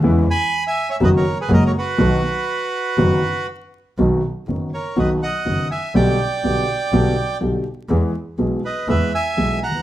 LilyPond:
<<
  \new Staff \with { instrumentName = "Bandoneon" } { \time 4/4 \key b \major \tempo 4 = 123 r8 <gis'' b''>8. <e'' gis''>8 <cis'' e''>16 <b' dis''>16 <ais' cis''>8 <gis' b'>16 <ais' dis''>16 <ais' cis''>16 <fis' b'>8~ | <fis' b'>2. r4 | r4. <ais' cis''>8 <b' dis''>8 <dis'' fis''>4 <e'' gis''>8 | <d'' g''>2. r4 |
r4. <b' dis''>8 <b' e''>8 <e'' gis''>4 <fis'' ais''>8 | }
  \new Staff \with { instrumentName = "Grand piano" } { \clef bass \time 4/4 \key b \major <e, cis e gis b e'>8 r4. <fis, dis fis b fis'>8 r8 <fis, cis fis gis ais fis'>8 r8 | <b,, b, dis fis b fis'>8 r4. <fis,, fis, dis fis b fis'>8 r4. | <b,, b, dis fis b fis'>8 r8 <fis,, fis, dis fis b fis'>8 r8 <b,, b, dis fis b fis'>8 r8 <fis,, fis, dis fis b fis'>8 r8 | <b,, b, d g b g'>8 r8 <b,, b, d g b g'>8 r8 <b,, b, d g b g'>8 r8 <b,, b, d g b g'>8 r8 |
<e, e gis b gis'>8 r8 <b,, b, e gis b gis'>8 r8 <e, e gis b gis'>8 r8 <b,, b, e gis b gis'>8 r32 dis,32 e,32 r32 | }
  \new Staff \with { instrumentName = "Double bass" } { \clef bass \time 4/4 \key b \major e,8 r4. fis,,8 r8 fis,,8 r8 | b,,8 r4. fis,,8 r4. | b,,8 r8 fis,,8 r8 b,,8 r8 fis,,8 r8 | b,,8 r8 b,,8 r8 b,,8 r8 b,,8 r8 |
e,8 r8 b,,8 r8 e,8 r8 b,,8 r8 | }
>>